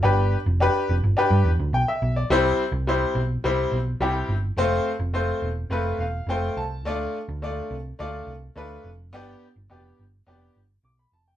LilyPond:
<<
  \new Staff \with { instrumentName = "Upright piano" } { \time 4/4 \key c \major \tempo 4 = 106 << { r2. g''16 e''8 d''16~ | d''16 r2. r8. | r2 r8 f''8 g''8 a''8 | r1 |
r2. d'''16 b''16 a''16 g''16 | } \\ { <d' g' b'>8 r8 <d' g' b'>8 r8 <d' g' b'>8 r4. | <g c' e' c''>8 r8 <g c' e' c''>8 r8 <g c' e' c''>8 r8 <g c' e' g'>8 r8 | <a c' f' c''>8 r8 <a c' f' c''>8 r8 <a c' f' b'>8 r8 <a c' f' c''>8 r8 | <a d' f' d''>8 r8 <a d' f' d''>8 r8 <a d' f' d''>8 r8 <a d' f' b'>8 r8 |
<b d' g' d''>8 r8 <b d' g' d''>8 r8 <b d' g' d''>8 r4. | } >> }
  \new Staff \with { instrumentName = "Picked electric bass" } { \clef bass \time 4/4 \key c \major g,,8. f,,8 r16 f,,16 g,,16 r16 g,16 e,16 d,16 b,,16 r16 b,,8 | c,8 r16 c,8. b,,8 c,8 b,,8 c,8 g,,8 | f,,8 r16 f,,8. e,,8 f,,8 e,,8 f,,8 c,8 | d,8 r16 d,8. c,8 d,8 c,8 d,8 f,,8 |
g,,8 r16 g,,16 f,,8 g,,8 f,,8 g,,8 b,,8 f,,8 | }
>>